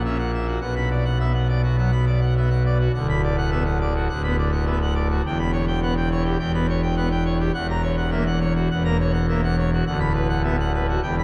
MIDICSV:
0, 0, Header, 1, 2, 480
1, 0, Start_track
1, 0, Key_signature, 2, "minor"
1, 0, Tempo, 578035
1, 513, Time_signature, 4, 2, 24, 8
1, 9331, End_track
2, 0, Start_track
2, 0, Title_t, "Pipe organ"
2, 0, Program_c, 0, 19
2, 0, Note_on_c, 0, 34, 64
2, 0, Note_on_c, 0, 46, 57
2, 42, Note_on_c, 0, 76, 48
2, 43, Note_on_c, 0, 61, 57
2, 141, Note_off_c, 0, 76, 0
2, 147, Note_off_c, 0, 61, 0
2, 150, Note_on_c, 0, 78, 61
2, 259, Note_off_c, 0, 78, 0
2, 283, Note_on_c, 0, 76, 62
2, 386, Note_off_c, 0, 76, 0
2, 393, Note_on_c, 0, 66, 51
2, 485, Note_off_c, 0, 34, 0
2, 485, Note_off_c, 0, 46, 0
2, 495, Note_off_c, 0, 66, 0
2, 503, Note_on_c, 0, 47, 71
2, 506, Note_on_c, 0, 35, 69
2, 507, Note_on_c, 0, 78, 65
2, 617, Note_off_c, 0, 78, 0
2, 630, Note_on_c, 0, 83, 72
2, 739, Note_off_c, 0, 83, 0
2, 754, Note_on_c, 0, 74, 64
2, 862, Note_off_c, 0, 74, 0
2, 870, Note_on_c, 0, 78, 67
2, 979, Note_off_c, 0, 78, 0
2, 994, Note_on_c, 0, 76, 60
2, 995, Note_on_c, 0, 59, 65
2, 1097, Note_off_c, 0, 76, 0
2, 1102, Note_off_c, 0, 59, 0
2, 1117, Note_on_c, 0, 78, 66
2, 1223, Note_off_c, 0, 78, 0
2, 1234, Note_on_c, 0, 74, 66
2, 1342, Note_off_c, 0, 74, 0
2, 1354, Note_on_c, 0, 66, 61
2, 1462, Note_off_c, 0, 66, 0
2, 1472, Note_on_c, 0, 54, 57
2, 1477, Note_on_c, 0, 78, 69
2, 1581, Note_off_c, 0, 54, 0
2, 1584, Note_off_c, 0, 78, 0
2, 1593, Note_on_c, 0, 83, 66
2, 1702, Note_off_c, 0, 83, 0
2, 1719, Note_on_c, 0, 74, 66
2, 1825, Note_off_c, 0, 74, 0
2, 1833, Note_on_c, 0, 78, 66
2, 1941, Note_off_c, 0, 78, 0
2, 1966, Note_on_c, 0, 76, 55
2, 1968, Note_on_c, 0, 59, 59
2, 2063, Note_off_c, 0, 76, 0
2, 2069, Note_off_c, 0, 59, 0
2, 2077, Note_on_c, 0, 78, 69
2, 2183, Note_off_c, 0, 78, 0
2, 2205, Note_on_c, 0, 74, 69
2, 2307, Note_off_c, 0, 74, 0
2, 2325, Note_on_c, 0, 66, 60
2, 2395, Note_off_c, 0, 47, 0
2, 2397, Note_off_c, 0, 35, 0
2, 2422, Note_off_c, 0, 66, 0
2, 2444, Note_on_c, 0, 78, 70
2, 2446, Note_on_c, 0, 38, 75
2, 2447, Note_on_c, 0, 26, 75
2, 2546, Note_off_c, 0, 78, 0
2, 2566, Note_on_c, 0, 83, 79
2, 2668, Note_off_c, 0, 83, 0
2, 2686, Note_on_c, 0, 74, 71
2, 2788, Note_off_c, 0, 74, 0
2, 2803, Note_on_c, 0, 78, 67
2, 2905, Note_off_c, 0, 78, 0
2, 2913, Note_on_c, 0, 59, 67
2, 2915, Note_on_c, 0, 76, 59
2, 3015, Note_off_c, 0, 76, 0
2, 3019, Note_off_c, 0, 59, 0
2, 3036, Note_on_c, 0, 78, 72
2, 3141, Note_off_c, 0, 78, 0
2, 3164, Note_on_c, 0, 74, 75
2, 3265, Note_off_c, 0, 74, 0
2, 3285, Note_on_c, 0, 66, 66
2, 3383, Note_off_c, 0, 38, 0
2, 3386, Note_off_c, 0, 66, 0
2, 3387, Note_off_c, 0, 26, 0
2, 3398, Note_on_c, 0, 78, 67
2, 3400, Note_on_c, 0, 38, 64
2, 3403, Note_on_c, 0, 26, 70
2, 3502, Note_off_c, 0, 78, 0
2, 3517, Note_on_c, 0, 83, 70
2, 3518, Note_on_c, 0, 59, 67
2, 3621, Note_off_c, 0, 83, 0
2, 3622, Note_off_c, 0, 59, 0
2, 3641, Note_on_c, 0, 74, 69
2, 3743, Note_off_c, 0, 74, 0
2, 3751, Note_on_c, 0, 78, 69
2, 3856, Note_off_c, 0, 78, 0
2, 3868, Note_on_c, 0, 59, 60
2, 3870, Note_on_c, 0, 76, 60
2, 3970, Note_off_c, 0, 76, 0
2, 3974, Note_off_c, 0, 59, 0
2, 3999, Note_on_c, 0, 78, 68
2, 4100, Note_off_c, 0, 78, 0
2, 4110, Note_on_c, 0, 74, 75
2, 4214, Note_off_c, 0, 74, 0
2, 4237, Note_on_c, 0, 66, 67
2, 4320, Note_off_c, 0, 38, 0
2, 4322, Note_off_c, 0, 26, 0
2, 4333, Note_off_c, 0, 66, 0
2, 4363, Note_on_c, 0, 28, 83
2, 4365, Note_on_c, 0, 40, 76
2, 4369, Note_on_c, 0, 79, 75
2, 4465, Note_off_c, 0, 79, 0
2, 4472, Note_on_c, 0, 83, 82
2, 4575, Note_off_c, 0, 83, 0
2, 4588, Note_on_c, 0, 73, 77
2, 4692, Note_off_c, 0, 73, 0
2, 4709, Note_on_c, 0, 79, 75
2, 4813, Note_off_c, 0, 79, 0
2, 4831, Note_on_c, 0, 59, 70
2, 4836, Note_on_c, 0, 78, 65
2, 4932, Note_off_c, 0, 78, 0
2, 4934, Note_off_c, 0, 59, 0
2, 4953, Note_on_c, 0, 79, 74
2, 5055, Note_off_c, 0, 79, 0
2, 5075, Note_on_c, 0, 73, 79
2, 5176, Note_off_c, 0, 73, 0
2, 5186, Note_on_c, 0, 67, 77
2, 5284, Note_off_c, 0, 40, 0
2, 5288, Note_off_c, 0, 28, 0
2, 5291, Note_off_c, 0, 67, 0
2, 5300, Note_on_c, 0, 40, 76
2, 5305, Note_on_c, 0, 28, 73
2, 5307, Note_on_c, 0, 79, 76
2, 5411, Note_off_c, 0, 79, 0
2, 5429, Note_on_c, 0, 59, 63
2, 5433, Note_on_c, 0, 83, 69
2, 5532, Note_off_c, 0, 59, 0
2, 5535, Note_off_c, 0, 83, 0
2, 5556, Note_on_c, 0, 73, 76
2, 5656, Note_off_c, 0, 73, 0
2, 5665, Note_on_c, 0, 79, 75
2, 5769, Note_off_c, 0, 79, 0
2, 5783, Note_on_c, 0, 78, 62
2, 5786, Note_on_c, 0, 59, 67
2, 5882, Note_off_c, 0, 78, 0
2, 5889, Note_off_c, 0, 59, 0
2, 5904, Note_on_c, 0, 79, 73
2, 6008, Note_off_c, 0, 79, 0
2, 6021, Note_on_c, 0, 73, 76
2, 6126, Note_off_c, 0, 73, 0
2, 6141, Note_on_c, 0, 67, 62
2, 6228, Note_off_c, 0, 40, 0
2, 6230, Note_off_c, 0, 28, 0
2, 6241, Note_off_c, 0, 67, 0
2, 6261, Note_on_c, 0, 78, 81
2, 6266, Note_on_c, 0, 28, 85
2, 6268, Note_on_c, 0, 40, 90
2, 6366, Note_off_c, 0, 78, 0
2, 6392, Note_on_c, 0, 82, 95
2, 6493, Note_off_c, 0, 82, 0
2, 6495, Note_on_c, 0, 73, 74
2, 6603, Note_off_c, 0, 73, 0
2, 6620, Note_on_c, 0, 78, 75
2, 6725, Note_off_c, 0, 78, 0
2, 6738, Note_on_c, 0, 58, 70
2, 6738, Note_on_c, 0, 76, 64
2, 6839, Note_off_c, 0, 76, 0
2, 6844, Note_off_c, 0, 58, 0
2, 6862, Note_on_c, 0, 78, 81
2, 6967, Note_off_c, 0, 78, 0
2, 6979, Note_on_c, 0, 73, 75
2, 7085, Note_off_c, 0, 73, 0
2, 7104, Note_on_c, 0, 66, 75
2, 7208, Note_off_c, 0, 66, 0
2, 7211, Note_off_c, 0, 28, 0
2, 7218, Note_off_c, 0, 40, 0
2, 7228, Note_on_c, 0, 28, 75
2, 7230, Note_on_c, 0, 78, 78
2, 7234, Note_on_c, 0, 40, 72
2, 7333, Note_off_c, 0, 78, 0
2, 7345, Note_on_c, 0, 82, 71
2, 7348, Note_on_c, 0, 58, 67
2, 7450, Note_off_c, 0, 82, 0
2, 7451, Note_off_c, 0, 58, 0
2, 7469, Note_on_c, 0, 73, 70
2, 7572, Note_off_c, 0, 73, 0
2, 7581, Note_on_c, 0, 78, 72
2, 7688, Note_off_c, 0, 78, 0
2, 7713, Note_on_c, 0, 58, 66
2, 7716, Note_on_c, 0, 76, 62
2, 7811, Note_off_c, 0, 76, 0
2, 7815, Note_off_c, 0, 58, 0
2, 7835, Note_on_c, 0, 78, 69
2, 7936, Note_off_c, 0, 78, 0
2, 7955, Note_on_c, 0, 73, 81
2, 8056, Note_off_c, 0, 73, 0
2, 8081, Note_on_c, 0, 66, 67
2, 8158, Note_off_c, 0, 28, 0
2, 8161, Note_off_c, 0, 40, 0
2, 8174, Note_off_c, 0, 66, 0
2, 8191, Note_on_c, 0, 26, 82
2, 8193, Note_on_c, 0, 38, 84
2, 8194, Note_on_c, 0, 78, 73
2, 8296, Note_off_c, 0, 78, 0
2, 8302, Note_on_c, 0, 83, 84
2, 8410, Note_off_c, 0, 83, 0
2, 8422, Note_on_c, 0, 71, 72
2, 8529, Note_off_c, 0, 71, 0
2, 8545, Note_on_c, 0, 78, 71
2, 8651, Note_off_c, 0, 78, 0
2, 8664, Note_on_c, 0, 59, 66
2, 8669, Note_on_c, 0, 76, 65
2, 8769, Note_off_c, 0, 76, 0
2, 8771, Note_off_c, 0, 59, 0
2, 8799, Note_on_c, 0, 78, 78
2, 8900, Note_off_c, 0, 78, 0
2, 8919, Note_on_c, 0, 71, 70
2, 9021, Note_off_c, 0, 71, 0
2, 9042, Note_on_c, 0, 66, 64
2, 9124, Note_off_c, 0, 26, 0
2, 9125, Note_off_c, 0, 38, 0
2, 9139, Note_off_c, 0, 66, 0
2, 9154, Note_on_c, 0, 28, 76
2, 9157, Note_on_c, 0, 79, 72
2, 9158, Note_on_c, 0, 40, 74
2, 9262, Note_off_c, 0, 79, 0
2, 9287, Note_on_c, 0, 83, 78
2, 9331, Note_off_c, 0, 28, 0
2, 9331, Note_off_c, 0, 40, 0
2, 9331, Note_off_c, 0, 83, 0
2, 9331, End_track
0, 0, End_of_file